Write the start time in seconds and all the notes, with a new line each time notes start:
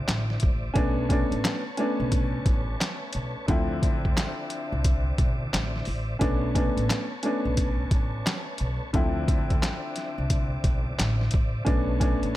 Already playing: D3 F3 C4 E4 C5 D5 E5 D6
0.08 A1, snare, clap, closed hi-hat
0.30 snare
0.40 A1, kick, closed hi-hat
0.74 B1 A3 B3 C#4 D4 B4 C#5 A5 C#6, kick, closed hi-hat
1.09 A3 B3 C#4 D4, kick, closed hi-hat
1.32 A1, closed hi-hat
1.45 snare, clap, closed hi-hat
1.77 A3 B3 C#4 D4, closed hi-hat
2.00 B1
2.12 kick, closed hi-hat
2.46 A1, kick, closed hi-hat
2.81 snare, clap, closed hi-hat
3.13 B1, closed hi-hat
3.46 D2 D3 F3 C4 E4 C5 D5 E5 D6, kick, closed hi-hat
3.83 kick, closed hi-hat
4.05 D2, kick
4.17 snare, clap, closed hi-hat
4.50 closed hi-hat
4.72 C2
4.84 kick, closed hi-hat
5.18 B1, kick, closed hi-hat
5.53 A1, snare, clap, closed hi-hat
5.76 snare
5.85 A1, open hi-hat
6.19 B1 A3 B3 C#4 D4 B4 C#5 A5 C#6, kick, closed hi-hat
6.55 A3 B3 C#4 D4, kick, closed hi-hat
6.77 A1, closed hi-hat
6.90 snare, clap, closed hi-hat
7.23 A3 B3 C#4 D4, closed hi-hat
7.45 B1
7.57 kick, closed hi-hat
7.91 A1, kick, closed hi-hat
8.26 snare, clap, closed hi-hat
8.58 B1, closed hi-hat
8.93 D2 D3 F3 C4 E4 C5 D5 E5 D6, kick, closed hi-hat
9.28 kick, closed hi-hat
9.50 D2, kick, closed hi-hat
9.63 snare, clap, closed hi-hat
9.96 snare, closed hi-hat
10.18 C2
10.30 kick, closed hi-hat
10.64 B1, kick, closed hi-hat
10.99 A1, snare, clap, closed hi-hat
11.21 snare
11.31 A1, kick, closed hi-hat
11.65 B1 A3 B3 C#4 D4 B4 C#5 A5 C#6, kick, closed hi-hat
12.00 A3 B3 C#4 D4, kick, closed hi-hat
12.23 A1, closed hi-hat